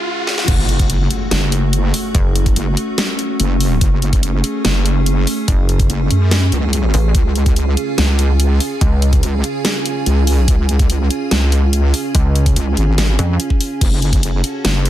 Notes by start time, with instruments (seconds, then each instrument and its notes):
Already playing: ambient pad C#2 C#3 G#3 F4 G#4, riser
0.27 snare
0.38 snare
0.48 wobble bass F#1, ambient pad A3 C#4 F#4, kick, closed hi-hat, crash, impact
0.69 closed hi-hat
0.79 kick, closed hi-hat
0.90 closed hi-hat
1.11 closed hi-hat
1.31 wobble bass F#1, snare, closed hi-hat
1.52 closed hi-hat
1.73 closed hi-hat
1.94 open hi-hat
2.15 wobble bass F#1, kick, closed hi-hat
2.36 closed hi-hat
2.46 kick, closed hi-hat
2.56 wobble bass F#1, closed hi-hat
2.77 closed hi-hat
2.98 snare, closed hi-hat
3.19 closed hi-hat
3.40 wobble bass F#1, closed hi-hat
3.61 open hi-hat
3.81 wobble bass F#1, ambient pad G#4, kick, closed hi-hat
4.02 closed hi-hat
4.13 kick, closed hi-hat
4.23 closed hi-hat
4.44 closed hi-hat
4.65 wobble bass F#1, snare, closed hi-hat
4.86 closed hi-hat
5.06 closed hi-hat
5.27 open hi-hat
5.48 wobble bass F#1, kick, closed hi-hat
5.69 closed hi-hat
5.79 kick, closed hi-hat
5.90 wobble bass F#1, closed hi-hat
6.11 wobble bass F#2, closed hi-hat
6.31 snare, closed hi-hat
6.52 wobble bass C#2, closed hi-hat
6.73 closed hi-hat
6.94 wobble bass A1, open hi-hat
7.15 wobble bass C#2, ambient pad C#3 C#4 F4 G#5, kick, closed hi-hat
7.36 closed hi-hat
7.46 kick, closed hi-hat
7.56 closed hi-hat
7.77 closed hi-hat
7.98 wobble bass C#2, snare, closed hi-hat
8.19 closed hi-hat
8.40 closed hi-hat
8.60 open hi-hat
8.81 wobble bass C#2, kick, closed hi-hat
9.02 closed hi-hat
9.13 kick, closed hi-hat
9.23 wobble bass C#2, closed hi-hat
9.44 closed hi-hat
9.65 snare, closed hi-hat
9.86 closed hi-hat
10.06 wobble bass C#2, closed hi-hat
10.27 open hi-hat
10.48 wobble bass C#2, kick, closed hi-hat
10.69 closed hi-hat
10.79 kick, closed hi-hat
10.90 closed hi-hat
11.11 closed hi-hat
11.31 wobble bass C#2, snare, closed hi-hat
11.52 closed hi-hat
11.73 closed hi-hat
11.94 open hi-hat
12.15 wobble bass C#2, kick, closed hi-hat
12.35 closed hi-hat
12.46 kick, closed hi-hat
12.56 wobble bass C#2, closed hi-hat
12.77 wobble bass G#1, closed hi-hat
12.98 snare, closed hi-hat
13.19 wobble bass F2, closed hi-hat
13.40 closed hi-hat
13.50 kick
13.61 open hi-hat
13.81 wobble bass F#1, ambient pad F#4 A4, kick, closed hi-hat, crash
14.02 closed hi-hat
14.13 kick, closed hi-hat
14.23 closed hi-hat
14.44 closed hi-hat
14.65 wobble bass F#1, snare, closed hi-hat
14.86 closed hi-hat